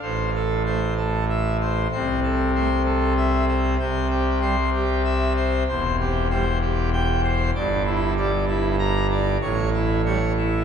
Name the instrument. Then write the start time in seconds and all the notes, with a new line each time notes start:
pipe organ
0.02 A1 A2 C5
0.35 A4
0.66 A3 C5
0.98 A4
1.29 E5
1.61 C5
1.92 C2 C3 C5
2.23 A4
2.55 A3 C5
2.86 A4
3.17 E5
3.48 C5
3.79 C2 C3 C5
4.11 G4
4.41 G3 C5
4.74 G4
5.05 E5
5.37 C5
5.69 E1 E2 C5
6.00 G4
6.31 G3 C5
6.61 G4
6.93 G5
7.24 C5
7.55 G1 G2 D5
7.86 E4
8.18 G3 D5
8.48 E4
8.79 A#5
9.11 D5
9.42 A1 A2 C#5
9.74 E4
10.05 G3 C#5
10.38 E4